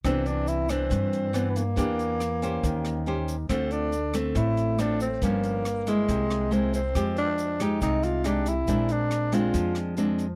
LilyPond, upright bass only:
\new Staff \with { instrumentName = "Upright bass" } { \clef bass \time 4/4 \key f \lydian \tempo 4 = 139 c,2 g,2 | e,2 ees,2 | d,2 a,,2 | g,,2 c,2 |
f,2 c,2 | bes,,2 f,2 | }